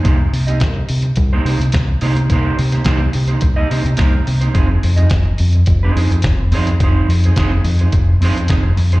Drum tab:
HH |x-oxx-oxx-oxx-ox|x-oxx-oxx-oxx-ox|x-oxx-oxx-oxx-ox|x-oxx-oxx-oxx-ox|
SD |----o-------o---|---oo-------o---|----o-------o---|----o-------o---|
BD |o---o---o---o---|o---o---o---o---|o---o---o---o---|o---o---o---o---|